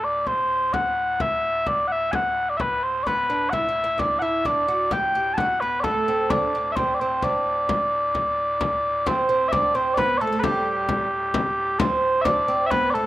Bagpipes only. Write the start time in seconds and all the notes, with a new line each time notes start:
0.04 D5
0.27 C5
0.73 F#5
1.21 E5
1.67 D5
1.88 F#5
1.92 E5
2.11 F#5 G#5
2.49 D5
2.57 B4 E5
2.83 C5
3.03 B4 D5
3.50 E5 F#5
3.99 D5
4.19 E5 F#5
4.46 D5
4.92 G5
5.34 F#5 A5
5.60 B4
5.80 A4 D5
6.30 D5
6.72 C5 E5
6.94 D5
7.00 C5
7.24 D5
9.07 C5
9.48 D5 E5
9.75 C5
9.94 D5
9.98 B4
10.18 A4 D5
10.39 B4
10.44 G4
11.79 C5
12.21 D5 E5
12.66 E5
12.71 B4
12.90 A4 D5